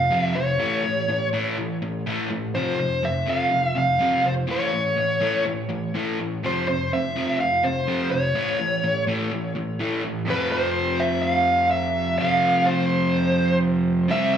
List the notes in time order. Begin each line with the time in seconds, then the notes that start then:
Already playing: F5
0.10 F2 C3 F3
0.24 E5
0.35 F2 C3 C#5
0.59 A2 E3 A3
0.84 A2 E3
1.09 A2 E3
1.33 A2 E3 A3
1.58 A2 E3
1.82 A2 E3
2.06 A2 E3 A3
2.31 A2 E3
2.55 F2 C3 F3 C5
2.79 F2 C3
3.03 F2 C3 E5
3.26 F2 C3 F3
3.30 F5
3.51 F2 C3
3.66 E5
3.75 F2 C3 F5
3.99 F2 C3 F3
4.24 F2 C3 C5
4.47 A2 E3 A3
4.51 C#5
4.72 A2 E3
4.97 A2 E3
5.21 A2 E3 A3
5.45 A2 E3
5.70 A2 E3
5.95 A2 E3 A3
6.20 A2 E3
6.44 F2 C3 F3 C5
6.68 F2 C3 C5
6.93 F2 C3 E5
7.16 F2 C3 F3
7.40 F2 C3 F5
7.63 F2 C3 C5
7.87 F2 C3 F3
8.11 F2 C3 C#5
8.35 A2 E3 A3
8.59 A2 E3
8.84 A2 E3
9.07 A2 E3 A3
9.32 A2 E3
9.55 A2 E3
9.79 A2 E3 A3
10.04 A2 E3
10.26 F2 C3 F3
10.30 B4
10.52 C5
11.00 E5
11.23 F5
11.71 E5
12.19 F2 C3 F3 F5
12.66 C5
14.08 C3 G3 C4 E5
14.34 E5